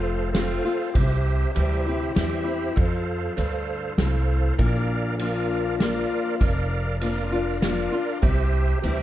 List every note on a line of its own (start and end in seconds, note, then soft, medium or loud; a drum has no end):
0.00 0.59 F1 medium
0.00 0.29 F2 medium
0.00 0.32 F3 medium
0.00 0.32 A3 medium
0.00 0.32 C4 medium
0.00 0.33 F4 medium
0.00 0.30 A4 medium
0.00 0.30 C5 medium
0.00 0.30 F5 medium
0.33 0.64 F3 medium
0.33 0.64 A3 medium
0.33 0.64 C4 medium
0.33 0.64 F4 medium
0.33 0.90 A4 medium
0.33 0.90 C5 medium
0.33 0.91 F5 medium
0.33 snare medium
0.33 ride medium
0.65 0.95 C4 soft
0.65 0.94 F4 medium
0.94 1.44 C2 medium
0.94 2.10 C3 medium
0.94 1.51 G4 medium
0.94 1.51 C5 medium
0.94 1.52 E5 medium
0.94 kick loud
0.94 ride medium
1.55 2.08 D2 medium
1.55 1.84 E3 medium
1.55 1.85 G3 medium
1.55 1.85 C4 medium
1.55 1.85 E4 medium
1.55 2.12 G4 medium
1.55 2.12 C5 medium
1.55 2.12 E5 medium
1.55 ride medium
1.86 2.15 C4 soft
1.86 2.15 E4 medium
2.15 2.68 E2 medium
2.15 2.45 E3 medium
2.15 2.45 G3 medium
2.15 2.45 C4 medium
2.15 2.44 E4 medium
2.15 2.72 G4 medium
2.15 2.73 C5 medium
2.15 2.73 E5 medium
2.15 snare medium
2.15 ride medium
2.45 2.76 C4 soft
2.45 2.75 E4 medium
2.76 3.37 F2 medium
2.76 3.26 F2 medium
2.76 3.33 A4 medium
2.76 3.33 C5 medium
2.76 3.34 F5 medium
2.76 kick loud
2.76 ride medium
3.36 3.89 D2 medium
3.36 3.95 G2 medium
3.36 3.93 A4 medium
3.36 3.94 C5 medium
3.36 3.94 F5 medium
3.36 ride medium
3.97 4.50 C2 medium
3.97 4.56 A2 medium
3.97 4.54 A4 medium
3.97 4.55 C5 medium
3.97 4.55 F5 medium
3.97 snare medium
3.97 ride medium
4.58 6.04 A#1 medium
4.58 5.74 A#2 medium
4.58 5.15 A#4 medium
4.58 5.15 D5 medium
4.58 5.16 F5 loud
4.58 kick loud
4.58 ride medium
5.18 5.77 F3 medium
5.18 5.78 A#3 medium
5.18 5.78 D4 medium
5.18 5.78 F4 medium
5.18 5.75 A#4 medium
5.18 5.76 D5 medium
5.18 5.76 F5 medium
5.18 ride medium
5.79 6.38 F3 medium
5.79 6.38 A#3 medium
5.79 6.39 D4 medium
5.79 6.39 F4 medium
5.79 6.36 A#4 medium
5.79 6.36 D5 medium
5.79 6.37 F5 medium
5.79 snare medium
5.79 ride medium
6.40 7.86 F1 medium
6.40 7.56 F2 medium
6.40 6.97 A#4 medium
6.40 6.97 D5 medium
6.40 6.97 F5 medium
6.40 kick loud
6.40 ride medium
7.00 7.30 F3 medium
7.00 7.31 A#3 medium
7.00 7.31 D4 medium
7.00 7.31 F4 medium
7.00 7.57 A#4 medium
7.00 7.58 D5 medium
7.00 7.58 F5 medium
7.00 ride medium
7.32 7.62 D4 medium
7.32 7.61 F4 medium
7.61 7.91 F3 medium
7.61 7.92 A#3 medium
7.61 7.92 D4 medium
7.61 7.91 F4 medium
7.61 8.18 A#4 medium
7.61 8.18 D5 medium
7.61 8.19 F5 medium
7.61 snare medium
7.61 ride medium
7.92 8.22 D4 soft
7.92 8.22 F4 medium
8.22 8.72 C2 medium
8.22 9.03 C3 medium
8.22 8.79 G4 medium
8.22 8.79 C5 medium
8.22 8.79 E5 loud
8.22 kick medium
8.22 ride medium
8.82 9.03 D2 medium
8.82 9.03 E3 medium
8.82 9.03 G3 medium
8.82 9.03 C4 medium
8.82 9.03 E4 medium
8.82 9.03 G4 medium
8.82 9.03 C5 medium
8.82 9.03 E5 medium
8.82 ride medium